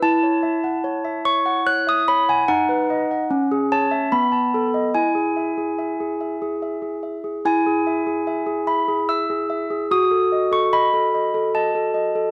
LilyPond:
\new Staff \with { instrumentName = "Handbells" } { \time 3/4 \key e \major \tempo 4 = 73 << { a''4. cis'''8 fis'''16 dis'''16 b''16 gis''16 | fis''4. a''8 b''4 | gis''2~ gis''8 r8 | gis''4. b''8 e'''4 |
dis'''8. cis'''16 b''4 a''4 | } \\ { e'16 cis''16 e''16 fis''16 cis''16 e''16 cis''16 fis''16 cis''16 e''16 cis''16 fis''16 | dis'16 b'16 dis''16 fis''16 cis'16 gis'16 cis''16 e''16 b16 a''16 a'16 dis''16 | e'16 gis'16 e''16 gis'16 e''16 gis'16 e''16 gis'16 e''16 gis'16 e''16 gis'16 | e'16 gis'16 e''16 gis'16 e''16 gis'16 e''16 gis'16 e''16 gis'16 e''16 gis'16 |
fis'16 a'16 dis''16 a'16 dis''16 a'16 dis''16 a'16 dis''16 a'16 dis''16 a'16 | } >> }